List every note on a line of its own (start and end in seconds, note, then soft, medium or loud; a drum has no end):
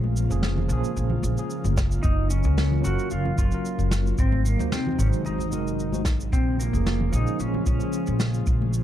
0.00 0.25 A#1 loud
0.00 4.14 C#3 medium
0.00 0.26 F3 medium
0.00 1.73 G#3 medium
0.00 0.27 A#3 medium
0.00 4.15 A#3 medium
0.00 0.28 C#4 medium
0.00 4.14 F4 loud
0.00 0.29 G#4 medium
0.00 high conga medium
0.17 cabasa medium
0.30 0.65 F1 medium
0.30 0.67 F3 medium
0.30 0.67 A#3 medium
0.30 0.67 C#4 medium
0.30 0.68 G#4 loud
0.30 muted conga medium
0.30 cabasa medium
0.43 snare medium
0.43 cabasa medium
0.58 low conga medium
0.68 0.80 A#1 loud
0.68 1.34 F3 loud
0.68 1.35 A#3 medium
0.68 1.36 C#4 medium
0.68 cabasa medium
0.73 1.36 G#4 loud
0.84 cabasa soft
0.96 1.17 A#1 medium
0.96 muted conga soft
0.96 cabasa medium
1.10 low conga loud
1.22 1.34 A#1 loud
1.22 muted conga medium
1.22 high conga medium
1.22 cabasa medium
1.37 1.76 F3 medium
1.37 1.76 A#3 medium
1.37 1.76 C#4 medium
1.37 1.76 G#4 loud
1.37 cabasa medium
1.50 cabasa medium
1.64 1.99 F#1 medium
1.64 high conga medium
1.64 cabasa medium
1.76 6.29 F#3 medium
1.76 kick loud
1.76 snare medium
1.76 muted conga medium
1.76 cabasa medium
1.91 cabasa medium
2.03 2.39 F#1 loud
2.03 2.30 D#4 loud
2.03 kick loud
2.03 cabasa medium
2.30 2.86 C#4 loud
2.30 cabasa loud
2.43 2.79 C#2 medium
2.43 2.80 F#3 medium
2.43 2.81 C#4 medium
2.43 2.82 F4 medium
2.43 2.82 A#4 loud
2.43 kick medium
2.43 muted conga medium
2.43 cabasa medium
2.58 snare medium
2.58 cabasa medium
2.72 low conga loud
2.81 2.95 F#1 loud
2.81 3.48 F#3 loud
2.81 3.49 C#4 medium
2.81 3.49 F4 medium
2.81 3.11 F#4 loud
2.81 cabasa medium
2.86 3.50 A#4 loud
2.99 cabasa soft
3.10 3.32 F#1 medium
3.10 3.37 F4 loud
3.10 cabasa medium
3.25 high conga medium
3.25 low conga medium
3.38 3.49 F#1 medium
3.38 3.88 F4 loud
3.38 kick loud
3.38 muted conga medium
3.38 cabasa medium
3.50 4.16 F#3 medium
3.50 4.17 C#4 medium
3.50 4.17 F4 medium
3.50 cabasa medium
3.54 4.18 A#4 medium
3.65 cabasa medium
3.79 4.13 F#1 medium
3.79 muted conga soft
3.79 cabasa medium
3.91 snare medium
3.91 cabasa medium
4.06 muted conga soft
4.06 cabasa soft
4.18 4.54 G#1 loud
4.18 6.31 C3 medium
4.18 6.30 D#3 medium
4.18 6.31 G#3 medium
4.18 4.45 C4 medium
4.18 6.31 D#4 loud
4.18 kick loud
4.18 cabasa medium
4.32 high conga medium
4.45 4.72 A#3 medium
4.45 cabasa medium
4.58 4.94 D#2 medium
4.58 4.95 G#3 medium
4.58 4.96 D#4 medium
4.58 4.96 F#4 medium
4.58 4.96 C5 loud
4.58 muted conga medium
4.58 cabasa medium
4.72 5.00 C4 medium
4.72 snare medium
4.72 cabasa medium
4.87 low conga loud
4.98 5.09 G#1 loud
4.98 5.49 G#3 medium
4.98 5.07 C#4 medium
4.98 5.50 D#4 medium
4.98 5.50 F#4 medium
4.98 5.50 C5 loud
4.98 cabasa medium
5.13 cabasa medium
5.25 5.52 G#1 medium
5.25 6.02 D#4 medium
5.25 muted conga medium
5.25 cabasa medium
5.38 low conga medium
5.38 cabasa soft
5.51 5.94 F#1 medium
5.51 5.89 G#3 medium
5.51 5.89 D#4 medium
5.51 5.90 F#4 medium
5.51 5.90 A#4 medium
5.51 muted conga medium
5.51 high conga medium
5.51 cabasa medium
5.67 cabasa medium
5.79 cabasa medium
5.92 6.28 G#1 medium
5.92 6.00 G#3 medium
5.92 6.00 D#4 medium
5.92 6.00 F#4 medium
5.92 6.01 C5 medium
5.92 high conga medium
5.92 cabasa medium
6.05 kick loud
6.05 snare medium
6.05 muted conga medium
6.05 cabasa medium
6.20 cabasa medium
6.32 6.68 A#1 loud
6.32 8.84 C#3 medium
6.32 8.84 F3 medium
6.32 8.84 G#3 medium
6.32 8.45 A#3 medium
6.32 6.59 C4 loud
6.32 8.84 F4 medium
6.32 kick loud
6.32 cabasa medium
6.59 7.15 A#3 medium
6.59 cabasa medium
6.72 7.08 F1 medium
6.72 7.09 F3 medium
6.72 7.10 A#3 medium
6.72 7.10 C#4 medium
6.72 7.11 G#4 loud
6.72 kick medium
6.72 muted conga medium
6.72 cabasa medium
6.86 snare medium
6.86 cabasa medium
7.00 low conga medium
7.11 7.23 A#1 loud
7.11 7.77 F3 medium
7.11 7.78 A#3 medium
7.11 7.78 C#4 medium
7.11 7.40 D#4 loud
7.11 cabasa loud
7.15 7.79 G#4 loud
7.27 cabasa soft
7.40 7.60 A#1 medium
7.40 7.65 C#4 loud
7.40 cabasa medium
7.54 high conga medium
7.54 low conga loud
7.66 7.77 A#1 medium
7.66 8.17 C#4 loud
7.66 kick loud
7.66 muted conga medium
7.66 cabasa medium
7.78 8.83 F3 medium
7.78 8.84 A#3 medium
7.78 8.84 C#4 medium
7.78 cabasa soft
7.83 8.84 G#4 loud
7.93 cabasa medium
8.07 8.42 A#1 medium
8.07 muted conga soft
8.07 cabasa soft
8.20 snare medium
8.20 cabasa medium
8.34 muted conga soft
8.34 cabasa medium
8.46 8.82 A#1 loud
8.46 8.84 C5 medium
8.46 kick loud
8.46 cabasa medium
8.62 high conga medium
8.73 cabasa medium